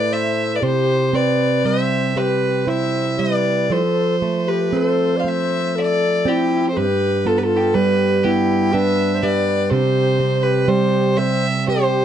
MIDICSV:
0, 0, Header, 1, 4, 480
1, 0, Start_track
1, 0, Tempo, 1020408
1, 297, Time_signature, 3, 2, 24, 8
1, 3179, Tempo, 983607
1, 5761, End_track
2, 0, Start_track
2, 0, Title_t, "Fiddle"
2, 0, Program_c, 0, 110
2, 0, Note_on_c, 0, 74, 98
2, 61, Note_on_c, 0, 76, 84
2, 69, Note_off_c, 0, 74, 0
2, 263, Note_on_c, 0, 74, 64
2, 270, Note_off_c, 0, 76, 0
2, 298, Note_on_c, 0, 72, 88
2, 305, Note_off_c, 0, 74, 0
2, 541, Note_on_c, 0, 74, 81
2, 548, Note_off_c, 0, 72, 0
2, 781, Note_on_c, 0, 76, 77
2, 788, Note_off_c, 0, 74, 0
2, 1022, Note_on_c, 0, 71, 73
2, 1029, Note_off_c, 0, 76, 0
2, 1262, Note_on_c, 0, 76, 80
2, 1269, Note_off_c, 0, 71, 0
2, 1501, Note_on_c, 0, 74, 75
2, 1508, Note_off_c, 0, 76, 0
2, 1750, Note_on_c, 0, 72, 72
2, 1757, Note_off_c, 0, 74, 0
2, 2108, Note_on_c, 0, 71, 67
2, 2116, Note_off_c, 0, 72, 0
2, 2241, Note_on_c, 0, 72, 73
2, 2248, Note_off_c, 0, 71, 0
2, 2443, Note_on_c, 0, 77, 58
2, 2450, Note_off_c, 0, 72, 0
2, 2482, Note_on_c, 0, 76, 75
2, 2489, Note_off_c, 0, 77, 0
2, 2721, Note_on_c, 0, 74, 81
2, 2728, Note_off_c, 0, 76, 0
2, 2952, Note_on_c, 0, 67, 72
2, 2959, Note_off_c, 0, 74, 0
2, 3144, Note_off_c, 0, 67, 0
2, 3147, Note_on_c, 0, 72, 59
2, 3182, Note_on_c, 0, 71, 81
2, 3189, Note_off_c, 0, 72, 0
2, 3428, Note_on_c, 0, 69, 76
2, 3435, Note_off_c, 0, 71, 0
2, 3483, Note_on_c, 0, 71, 51
2, 3491, Note_off_c, 0, 69, 0
2, 3507, Note_on_c, 0, 69, 71
2, 3514, Note_off_c, 0, 71, 0
2, 3570, Note_on_c, 0, 67, 53
2, 3577, Note_off_c, 0, 69, 0
2, 3583, Note_on_c, 0, 69, 76
2, 3590, Note_off_c, 0, 67, 0
2, 3659, Note_on_c, 0, 71, 82
2, 3667, Note_off_c, 0, 69, 0
2, 3900, Note_on_c, 0, 67, 75
2, 3907, Note_off_c, 0, 71, 0
2, 4142, Note_on_c, 0, 76, 91
2, 4150, Note_off_c, 0, 67, 0
2, 4350, Note_off_c, 0, 76, 0
2, 4350, Note_on_c, 0, 76, 63
2, 4386, Note_on_c, 0, 74, 87
2, 4394, Note_off_c, 0, 76, 0
2, 4616, Note_on_c, 0, 72, 90
2, 4624, Note_off_c, 0, 74, 0
2, 4971, Note_on_c, 0, 71, 81
2, 4978, Note_off_c, 0, 72, 0
2, 5094, Note_on_c, 0, 72, 81
2, 5101, Note_off_c, 0, 71, 0
2, 5333, Note_on_c, 0, 76, 94
2, 5340, Note_off_c, 0, 72, 0
2, 5578, Note_off_c, 0, 76, 0
2, 5583, Note_on_c, 0, 72, 88
2, 5761, Note_off_c, 0, 72, 0
2, 5761, End_track
3, 0, Start_track
3, 0, Title_t, "Flute"
3, 0, Program_c, 1, 73
3, 0, Note_on_c, 1, 71, 79
3, 55, Note_on_c, 1, 72, 73
3, 62, Note_off_c, 1, 71, 0
3, 256, Note_on_c, 1, 71, 51
3, 264, Note_off_c, 1, 72, 0
3, 287, Note_on_c, 1, 67, 75
3, 294, Note_off_c, 1, 71, 0
3, 540, Note_on_c, 1, 71, 65
3, 547, Note_off_c, 1, 67, 0
3, 777, Note_on_c, 1, 72, 73
3, 784, Note_off_c, 1, 71, 0
3, 1018, Note_on_c, 1, 67, 64
3, 1026, Note_off_c, 1, 72, 0
3, 1249, Note_on_c, 1, 72, 63
3, 1256, Note_off_c, 1, 67, 0
3, 1493, Note_on_c, 1, 71, 60
3, 1500, Note_off_c, 1, 72, 0
3, 1740, Note_on_c, 1, 69, 73
3, 1747, Note_off_c, 1, 71, 0
3, 1955, Note_off_c, 1, 69, 0
3, 2101, Note_on_c, 1, 67, 63
3, 2225, Note_on_c, 1, 69, 72
3, 2232, Note_off_c, 1, 67, 0
3, 2431, Note_on_c, 1, 74, 46
3, 2438, Note_off_c, 1, 69, 0
3, 2461, Note_on_c, 1, 72, 72
3, 2468, Note_off_c, 1, 74, 0
3, 2709, Note_on_c, 1, 69, 74
3, 2716, Note_off_c, 1, 72, 0
3, 2955, Note_on_c, 1, 64, 62
3, 2962, Note_off_c, 1, 69, 0
3, 3154, Note_off_c, 1, 64, 0
3, 3161, Note_on_c, 1, 69, 53
3, 3182, Note_on_c, 1, 67, 67
3, 3189, Note_off_c, 1, 69, 0
3, 3426, Note_on_c, 1, 65, 60
3, 3434, Note_off_c, 1, 67, 0
3, 3488, Note_on_c, 1, 67, 39
3, 3496, Note_off_c, 1, 65, 0
3, 3516, Note_on_c, 1, 65, 63
3, 3523, Note_off_c, 1, 67, 0
3, 3568, Note_on_c, 1, 64, 45
3, 3575, Note_off_c, 1, 65, 0
3, 3591, Note_on_c, 1, 65, 69
3, 3599, Note_off_c, 1, 64, 0
3, 3662, Note_on_c, 1, 67, 73
3, 3669, Note_off_c, 1, 65, 0
3, 3906, Note_on_c, 1, 64, 66
3, 3914, Note_off_c, 1, 67, 0
3, 4140, Note_on_c, 1, 71, 76
3, 4148, Note_off_c, 1, 64, 0
3, 4344, Note_on_c, 1, 72, 57
3, 4352, Note_off_c, 1, 71, 0
3, 4384, Note_on_c, 1, 71, 68
3, 4391, Note_off_c, 1, 72, 0
3, 4619, Note_on_c, 1, 67, 77
3, 4626, Note_off_c, 1, 71, 0
3, 4964, Note_off_c, 1, 67, 0
3, 4964, Note_on_c, 1, 67, 71
3, 5091, Note_off_c, 1, 67, 0
3, 5091, Note_on_c, 1, 67, 75
3, 5341, Note_on_c, 1, 72, 75
3, 5348, Note_off_c, 1, 67, 0
3, 5472, Note_off_c, 1, 72, 0
3, 5580, Note_on_c, 1, 67, 78
3, 5761, Note_off_c, 1, 67, 0
3, 5761, End_track
4, 0, Start_track
4, 0, Title_t, "Steel-string acoustic guitar"
4, 0, Program_c, 2, 25
4, 0, Note_on_c, 2, 45, 83
4, 0, Note_on_c, 2, 57, 52
4, 0, Note_on_c, 2, 64, 60
4, 292, Note_off_c, 2, 45, 0
4, 294, Note_on_c, 2, 48, 67
4, 343, Note_off_c, 2, 57, 0
4, 533, Note_on_c, 2, 60, 49
4, 776, Note_on_c, 2, 55, 50
4, 1014, Note_off_c, 2, 60, 0
4, 1016, Note_on_c, 2, 60, 49
4, 1255, Note_off_c, 2, 64, 0
4, 1257, Note_on_c, 2, 64, 50
4, 1494, Note_off_c, 2, 55, 0
4, 1500, Note_on_c, 2, 55, 52
4, 1738, Note_off_c, 2, 48, 0
4, 1740, Note_on_c, 2, 53, 66
4, 1790, Note_off_c, 2, 55, 0
4, 1790, Note_off_c, 2, 64, 0
4, 1984, Note_off_c, 2, 60, 0
4, 1986, Note_on_c, 2, 57, 49
4, 2223, Note_on_c, 2, 60, 52
4, 2461, Note_off_c, 2, 57, 0
4, 2467, Note_on_c, 2, 57, 50
4, 2936, Note_off_c, 2, 60, 0
4, 2942, Note_on_c, 2, 60, 56
4, 3184, Note_on_c, 2, 43, 75
4, 3199, Note_off_c, 2, 53, 0
4, 3229, Note_off_c, 2, 60, 0
4, 3231, Note_off_c, 2, 57, 0
4, 3422, Note_on_c, 2, 59, 50
4, 3662, Note_on_c, 2, 55, 58
4, 3900, Note_off_c, 2, 59, 0
4, 3906, Note_on_c, 2, 59, 54
4, 4147, Note_on_c, 2, 62, 59
4, 4384, Note_off_c, 2, 55, 0
4, 4386, Note_on_c, 2, 55, 58
4, 4621, Note_on_c, 2, 48, 77
4, 4622, Note_off_c, 2, 43, 0
4, 4669, Note_off_c, 2, 59, 0
4, 4669, Note_off_c, 2, 62, 0
4, 4857, Note_on_c, 2, 60, 54
4, 5090, Note_off_c, 2, 55, 0
4, 5092, Note_on_c, 2, 55, 58
4, 5332, Note_off_c, 2, 60, 0
4, 5338, Note_on_c, 2, 60, 57
4, 5582, Note_on_c, 2, 67, 55
4, 5761, Note_off_c, 2, 48, 0
4, 5761, Note_off_c, 2, 55, 0
4, 5761, Note_off_c, 2, 60, 0
4, 5761, Note_off_c, 2, 67, 0
4, 5761, End_track
0, 0, End_of_file